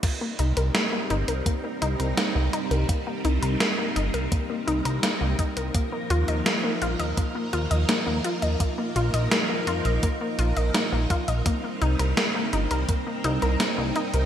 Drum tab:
CC |x---------------|----------------|----------------|----------------|
HH |x-xxx-xxx-xxx-xx|x-xxx-xxx-xxx-xx|x-xxx-xxx-xxx-xx|x-xxx-xxx-xxx-xx|
SD |----o-------o---|----o-------o---|----o-------o---|----o-------o---|
BD |o-------o-------|o-------o-----o-|o-------o-------|o-------o-----o-|

CC |----------------|
HH |x-xxx-xxx-xxx-xx|
SD |----o-------o---|
BD |o-------o-------|